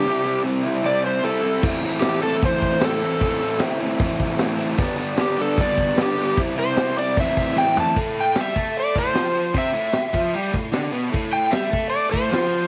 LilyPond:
<<
  \new Staff \with { instrumentName = "Electric slide guitar" } { \time 4/4 \key a \minor \tempo 4 = 152 g'4 r4 d''8 c''8 a'4 | r4 g'8 a'8 c''4 a'4~ | a'4 r2. | r4 g'8 a'8 d''4 g'4 |
r8 c''4 d''8 e''4 g''8 a''8 | r8 g''8 e''4 d''8 c''4. | e''2 r2 | r8 g''8 e''4 d''8 c''4. | }
  \new Staff \with { instrumentName = "Overdriven electric guitar" } { \time 4/4 \key a \minor <c g c' e'>8 <g c' e'>8 <c g c' e'>8 <g c' e'>8 <c g c' e'>4 <c g c' e'>8 <g c' e'>8 | <a, e a c' e'>8 <a c' e'>8 <e a c' e'>8 <a c' e'>8 <a, e a c' e'>4 <e a c' e'>8 <a c' e'>8 | <a, e a c' e'>8 <a c' e'>8 <e a c' e'>8 <a c' e'>8 <a, e a c' e'>4 <e a c' e'>8 <a c' e'>8 | <g, d g b d'>8 <g b d'>8 <d g b d'>8 <g b d'>8 <g, d g b d'>4 <d g b d'>8 <g b d'>8 |
<c g c' e'>8 <g c' e'>8 <c g c' e'>8 <g c' e'>8 <a, e a c' e'>4 <e a c' e'>8 <a c' e'>8 | <a, a>4 <g g'>8 <a a'>4 <a, a>8 <f f'>4 | <c c'>8 <a, a>8 r8 <f f'>8 <g g'>8 a,8 <d d'>8 <b, b>8 | <a, a>4 <g g'>8 <a a'>4 <a, a>8 <f f'>4 | }
  \new DrumStaff \with { instrumentName = "Drums" } \drummode { \time 4/4 r4 r4 r4 r4 | <cymc bd>8 hho8 <hho sn>8 hho8 <hho bd>8 <hho bd>16 sn16 <hho sn>8 hho8 | <hho bd>8 hho8 <hho sn>8 hho8 <hho bd>8 <hho bd>16 sn16 <hho sn>8 hho8 | <hho bd>8 hho8 <hho sn>8 hho8 <hho bd>16 sn16 <hho bd>16 sn16 <hho sn>8 hho8 |
<hho bd>8 hho8 <hho sn>8 hho8 <hho bd>16 sn16 <hho bd>16 sn16 sn8 tomfh8 | <cymc bd>8 cymc8 <cymc sn>8 <cymc bd>8 cymc8 <cymc bd>8 <cymc sn>8 cymc8 | <cymc bd>8 cymc8 <cymc sn>8 <cymc bd>8 cymc8 <cymc bd>8 <cymc sn>8 cymc8 | <cymc bd>8 cymc8 <cymc sn>8 <cymc bd>8 cymc8 <cymc bd>8 <cymc sn>8 cymc8 | }
>>